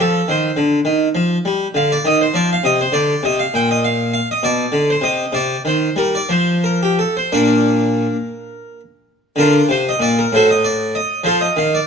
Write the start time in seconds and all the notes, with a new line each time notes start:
0.00 F3 A4
0.28 D#3 C5
0.57 D3
0.85 D#3
1.15 F3
1.45 G3
1.74 D3 F5
1.92 D5
2.05 D#3 D#5
2.21 C5
2.34 F3 D5
2.53 F5
2.64 C3 D#5
2.81 C5
2.92 D3 D5
3.23 C3 D#5
3.39 F5
3.54 A#2 G5
3.71 D#5
3.84 F5
4.14 F5
4.31 D#5
4.43 B2 D5
4.72 D3
4.90 C5
5.01 C3 D#5
5.32 C3 D5
5.65 D#3 C5
5.96 G3 A#4
6.15 D5
6.29 F3 C5
6.64 A#4
6.83 G4
6.99 A4
7.17 C5
7.32 A#2 A#3 D4 A#4
9.36 D3 D4 F4 A#4
9.69 C3 C5
9.89 D#5
10.00 A#2 D5
10.19 A#4
10.32 A2 F#4 A4 C5
10.51 D#5
10.64 D5
10.95 D#5
11.24 F3 F4 A4 C5
11.41 D#5
11.56 D#3 F5
11.75 D5